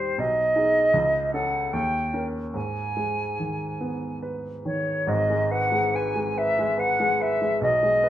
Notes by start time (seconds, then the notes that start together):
Already playing: D#2 D#3 G3 C4 G4 C5
0.18 B1 D#5
0.56 D#4 G#4
0.94 C#2
1.33 C#4 A4 F#5
1.73 D#2 G5
2.14 C#4 A#4
2.54 G#2 G#5
2.97 G#3
3.39 D#3
3.81 B3
4.23 B4
4.65 D#3 C#5
5.07 G#1 G#2 D#5
5.30 G#3
5.50 B4 F#5
5.72 G#3
5.94 B4 G#5
6.16 G#3
6.37 B4 E5
6.59 G#3
6.78 B4 F#5
7.00 G#3
7.20 B4 E5
7.42 G#3
7.61 B1 D#5
7.83 G#3
8.03 B4